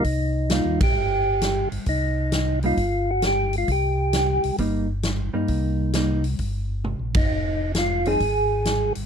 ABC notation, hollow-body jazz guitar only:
X:1
M:4/4
L:1/8
Q:"Swing" 1/4=132
K:Cm
V:1 name="Hollow-body jazz guitar"
z2 [G,B,E] z4 z | z3 [G,B,E] z4 | z4 [G,B,E] z2 [G,B,E]- | [G,B,E]2 [G,B,E] z4 z |
z3 [F,CEA] z4 |]